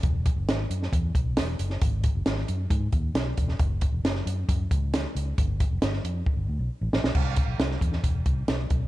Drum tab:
CC |----------------|----------------|----------------|----------------|
HH |x-x-x-x-x-x-x-x-|x-x-x-x-x-x-x-x-|x-x-x-x-x-x-x-x-|x-x-x-x---------|
SD |----o--o----o--o|----oo------o--o|----oo------o---|----oo--------oo|
BD |o-o-----o-o-----|o-o-----o-o---o-|o-o-----o-o-----|o-o-----o-------|

CC |x---------------|
HH |--x-x-x-x-x-x-x-|
SD |----oo-o----o---|
BD |o-o---o-o-o---o-|